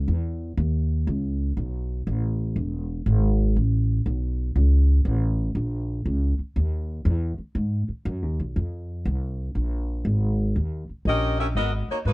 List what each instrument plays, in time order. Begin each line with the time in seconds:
0.08 upright bass E2
0.57 upright bass D#2
1.07 upright bass C#2
1.57 upright bass B1
2.07 upright bass A1
2.56 upright bass E1
3.06 upright bass G#1
3.56 upright bass A1
4.06 upright bass B1
4.56 upright bass C#2
5.05 upright bass A1
5.55 upright bass A#1
6.06 upright bass C#2
6.39 muted upright bass stroke
6.56 upright bass D#2
7.05 upright bass E2
7.38 muted upright bass stroke
7.55 upright bass G#2
7.89 muted upright bass stroke
8.05 upright bass F#2
8.22 upright bass D#2
8.40 upright bass B1
8.56 upright bass F2
9.05 upright bass C2
9.55 upright bass A#1
10.05 upright bass G#1
10.56 upright bass D#2
10.89 muted upright bass stroke
11.05 upright bass A#1, saxophone section C#4 G4 A#4 D#5
11.40 saxophone section C#4 G4 A#4 E5
11.55 upright bass G#1, saxophone section B3 F#4 A#4 D#5
11.88 saxophone section A#3 D#4 F#4 C#5, muted upright bass stroke
12.05 upright bass G#2, saxophone section F#3 A#3 D#4 B4